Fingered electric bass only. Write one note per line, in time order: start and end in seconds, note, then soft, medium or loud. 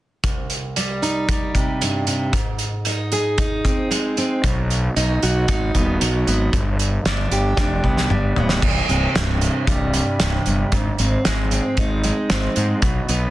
4.44 4.88 B1 medium
4.96 5.18 B1 medium
5.23 5.45 B1 medium
5.49 5.70 G#1 medium
5.75 5.97 D#1 medium
6.01 6.23 B1 medium
6.27 6.49 G#1 medium
6.53 6.97 G1 medium
7.05 7.27 G1 medium
7.31 7.53 G1 medium
7.58 7.80 F1 medium
7.84 8.06 C2 medium
8.11 8.33 G1 medium
8.37 8.58 D1 medium
8.63 8.79 C1 medium
8.89 9.05 C1 medium
9.15 9.48 C1 medium
9.67 10.00 C1 medium
10.21 10.37 C1 medium
10.47 10.63 G1 medium
10.72 10.89 G#1 medium
10.99 11.15 G#1 medium
11.27 11.59 G#1 medium
11.77 12.10 G#1 medium
12.31 12.47 G#1 medium
12.57 12.73 G#2 medium
12.83 12.99 B1 medium
13.09 13.25 B1 medium